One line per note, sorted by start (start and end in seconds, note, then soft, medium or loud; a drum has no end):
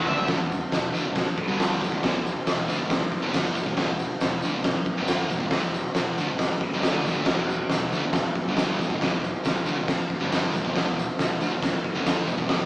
0.06 0.27 D2 medium
0.06 0.28 D3 medium
0.06 0.28 A3 loud
0.06 0.29 D4 loud
0.06 0.28 E5 loud
0.06 mid tom medium
0.18 floor tom loud
0.18 tambourine soft
0.27 0.38 E1 loud
0.27 0.38 E2 medium
0.27 0.39 B2 loud
0.27 kick loud
0.27 snare loud
0.27 open hi-hat medium
0.39 0.59 E1 medium
0.39 0.57 E2 medium
0.39 0.57 B2 medium
0.52 tambourine medium
0.62 tambourine soft
0.72 0.92 E1 medium
0.72 0.89 E2 medium
0.72 0.90 B2 medium
0.72 snare loud
0.72 open hi-hat medium
0.72 tambourine medium
0.93 1.04 D2 medium
0.93 1.04 D3 loud
0.93 1.05 A3 loud
0.93 tambourine medium
1.05 1.26 E1 medium
1.05 1.23 E2 medium
1.05 1.23 B2 medium
1.16 kick loud
1.16 snare loud
1.16 open hi-hat medium
1.16 tambourine medium
1.26 muted distorted electric guitar stroke medium
1.26 muted fingered electric bass stroke soft
1.26 tambourine soft
1.38 kick medium
1.38 tambourine soft
1.48 1.79 G1 loud
1.48 1.81 G2 medium
1.48 1.81 D3 loud
1.48 1.81 G3 medium
1.60 snare loud
1.60 open hi-hat medium
1.60 tambourine medium
1.81 1.91 E1 medium
1.81 1.91 E2 medium
1.81 1.92 B2 medium
1.81 kick medium
1.81 tambourine medium
1.92 2.02 E1 medium
1.92 2.03 E2 medium
1.92 2.04 B2 medium
1.92 kick medium
2.03 2.13 E1 medium
2.03 2.14 E2 loud
2.03 2.15 B2 loud
2.03 kick medium
2.03 snare loud
2.03 open hi-hat medium
2.14 2.34 E1 medium
2.14 2.32 E2 medium
2.14 2.33 B2 medium
2.27 tambourine medium
2.47 2.67 E1 medium
2.47 2.65 E2 medium
2.47 2.65 B2 medium
2.47 snare loud
2.47 open hi-hat medium
2.47 tambourine medium
2.68 2.78 D2 medium
2.68 2.79 D3 medium
2.68 2.79 A3 loud
2.68 tambourine medium
2.79 3.00 E1 medium
2.79 2.97 E2 medium
2.79 2.97 B2 medium
2.90 kick loud
2.90 snare loud
2.90 open hi-hat medium
2.90 tambourine medium
3.01 muted distorted electric guitar stroke medium
3.01 muted fingered electric bass stroke soft
3.01 tambourine soft
3.12 kick medium
3.12 tambourine soft
3.22 3.54 G1 loud
3.22 3.55 G2 medium
3.22 3.55 D3 loud
3.22 3.56 G3 loud
3.34 snare loud
3.34 open hi-hat medium
3.34 tambourine loud
3.55 3.66 E1 medium
3.55 3.66 E2 medium
3.55 3.65 B2 medium
3.55 kick medium
3.55 tambourine medium
3.66 3.76 E1 medium
3.66 3.75 E2 medium
3.66 3.77 B2 medium
3.66 kick medium
3.66 tambourine soft
3.77 3.88 E1 loud
3.77 3.88 E2 loud
3.77 3.88 B2 loud
3.77 kick loud
3.77 snare loud
3.77 open hi-hat medium
3.89 4.10 E1 medium
3.89 4.07 E2 medium
3.89 4.07 B2 medium
3.99 tambourine medium
4.20 4.43 E1 medium
4.20 4.40 E2 medium
4.20 4.40 B2 medium
4.20 snare loud
4.20 open hi-hat medium
4.20 tambourine medium
4.42 4.54 D2 medium
4.42 4.54 D3 medium
4.42 4.55 A3 loud
4.42 tambourine medium
4.55 4.75 E1 medium
4.55 4.73 E2 medium
4.55 4.73 B2 medium
4.64 kick loud
4.64 snare loud
4.64 open hi-hat medium
4.64 tambourine medium
4.76 muted fingered electric bass stroke soft
4.76 muted distorted electric guitar stroke medium
4.86 kick medium
4.97 5.29 G1 loud
4.97 5.30 G2 loud
4.97 5.30 D3 loud
4.97 5.31 G3 loud
5.08 snare loud
5.08 open hi-hat medium
5.08 tambourine loud
5.30 5.40 E1 medium
5.30 5.39 E2 medium
5.30 5.40 B2 medium
5.30 kick medium
5.30 tambourine medium
5.40 5.51 E1 medium
5.40 5.52 E2 medium
5.40 5.52 B2 medium
5.40 kick medium
5.40 tambourine soft
5.50 5.62 E1 medium
5.50 5.62 E2 medium
5.50 5.62 B2 loud
5.50 kick medium
5.50 snare loud
5.50 open hi-hat medium
5.50 tambourine soft
5.63 5.84 E1 medium
5.63 5.81 E2 medium
5.63 5.81 B2 medium
5.63 tambourine soft
5.74 tambourine medium
5.86 tambourine soft
5.94 6.16 E1 medium
5.94 6.14 E2 medium
5.94 6.14 B2 medium
5.94 snare loud
5.94 open hi-hat medium
5.94 tambourine medium
6.17 6.28 D2 medium
6.17 6.28 D3 loud
6.17 6.29 A3 medium
6.17 tambourine medium
6.28 6.50 E1 medium
6.28 6.46 E2 medium
6.28 6.47 B2 medium
6.28 tambourine soft
6.39 kick loud
6.39 snare loud
6.39 open hi-hat medium
6.39 tambourine medium
6.50 muted fingered electric bass stroke soft
6.50 muted distorted electric guitar stroke medium
6.61 kick medium
6.61 tambourine soft
6.71 6.82 G1 loud
6.71 6.83 G2 medium
6.71 6.83 D3 medium
6.71 tambourine soft
6.83 7.04 D2 loud
6.83 7.05 D3 medium
6.83 7.06 A3 medium
6.83 7.06 D4 loud
6.83 snare loud
6.83 open hi-hat medium
6.83 tambourine loud
7.04 7.15 E1 medium
7.04 7.16 E2 medium
7.04 7.16 B2 medium
7.04 kick medium
7.04 tambourine medium
7.15 7.26 D2 loud
7.15 7.27 D3 medium
7.15 7.27 A3 medium
7.15 kick medium
7.26 7.37 E1 medium
7.26 7.38 E2 medium
7.26 kick medium
7.26 snare loud
7.26 crash loud
7.30 7.39 B2 loud
7.38 7.59 E1 medium
7.38 7.57 E2 medium
7.38 7.57 B2 medium
7.50 tambourine medium
7.61 tambourine soft
7.69 7.91 E1 medium
7.69 7.90 E2 medium
7.69 snare loud
7.69 open hi-hat medium
7.69 tambourine loud
7.73 7.90 B2 medium
7.92 8.02 D2 medium
7.92 8.03 D3 medium
7.92 8.04 A3 loud
7.92 tambourine medium
8.03 8.24 E1 medium
8.03 8.22 E2 medium
8.03 8.22 B2 medium
8.13 kick loud
8.13 snare loud
8.13 open hi-hat medium
8.13 tambourine medium
8.24 muted fingered electric bass stroke soft
8.24 muted distorted electric guitar stroke medium
8.24 tambourine soft
8.35 kick medium
8.35 tambourine soft
8.46 8.77 G1 loud
8.46 8.80 G2 medium
8.46 8.80 D3 medium
8.46 8.80 G3 loud
8.56 snare loud
8.56 open hi-hat medium
8.56 tambourine loud
8.79 8.89 E1 medium
8.79 8.90 E2 medium
8.79 8.90 B2 medium
8.79 kick medium
8.79 tambourine medium
8.89 9.00 E1 medium
8.89 9.00 E2 medium
8.89 9.01 B2 medium
8.89 kick medium
9.01 9.10 E1 loud
9.01 9.10 E2 medium
9.01 9.11 B2 loud
9.01 kick medium
9.01 snare loud
9.01 open hi-hat medium
9.11 9.32 E1 medium
9.11 9.29 E2 medium
9.11 9.30 B2 medium
9.24 tambourine medium
9.35 tambourine soft
9.44 9.65 E1 medium
9.44 9.62 E2 medium
9.44 9.63 B2 medium
9.44 snare loud
9.44 open hi-hat medium
9.44 tambourine loud
9.66 9.77 D2 medium
9.66 9.77 D3 medium
9.66 9.77 A3 loud
9.66 tambourine medium
9.78 9.98 E1 medium
9.78 9.95 E2 medium
9.78 9.95 B2 medium
9.88 kick loud
9.88 snare loud
9.88 open hi-hat medium
9.88 tambourine medium
9.99 muted distorted electric guitar stroke medium
9.99 muted fingered electric bass stroke soft
10.10 kick medium
10.10 tambourine soft
10.20 10.52 G1 loud
10.20 10.53 G2 medium
10.20 10.53 D3 medium
10.20 10.53 G3 loud
10.32 snare loud
10.32 open hi-hat medium
10.32 tambourine loud
10.54 10.64 E1 medium
10.54 10.65 E2 medium
10.54 10.65 B2 medium
10.54 kick medium
10.54 tambourine medium
10.64 10.75 E1 medium
10.64 10.75 E2 medium
10.64 10.76 B2 medium
10.64 kick medium
10.76 10.86 E1 loud
10.76 10.86 E2 medium
10.76 10.87 B2 loud
10.76 kick medium
10.76 snare loud
10.76 open hi-hat medium
10.87 11.07 E1 medium
10.87 11.04 E2 medium
10.87 11.05 B2 medium
10.99 tambourine medium
11.10 tambourine soft
11.19 11.39 E1 medium
11.19 11.37 E2 medium
11.19 11.37 B2 medium
11.19 snare loud
11.19 open hi-hat medium
11.19 tambourine medium
11.40 11.51 D2 loud
11.40 11.51 D3 loud
11.40 11.52 A3 medium
11.40 tambourine medium
11.52 11.72 E1 medium
11.52 11.69 E2 medium
11.52 11.70 B2 medium
11.63 kick loud
11.63 snare loud
11.63 open hi-hat medium
11.63 tambourine medium
11.73 muted fingered electric bass stroke soft
11.73 muted distorted electric guitar stroke medium
11.84 kick medium
11.84 tambourine soft
11.94 12.25 G1 medium
11.94 12.27 G2 loud
11.94 12.27 D3 loud
11.94 12.27 G3 loud
12.06 snare loud
12.06 open hi-hat medium
12.06 tambourine loud
12.27 12.37 E1 medium
12.27 12.36 E2 medium
12.27 12.37 B2 medium
12.27 kick medium
12.27 tambourine medium
12.38 12.48 E1 medium
12.38 12.47 E2 medium
12.38 12.48 B2 medium
12.38 kick medium
12.38 tambourine soft
12.48 12.58 E1 medium
12.48 12.59 E2 medium
12.48 12.59 B2 loud
12.48 kick medium
12.48 snare loud
12.48 open hi-hat medium
12.48 tambourine soft
12.59 12.65 E1 medium
12.59 12.65 E2 medium
12.59 12.65 B2 medium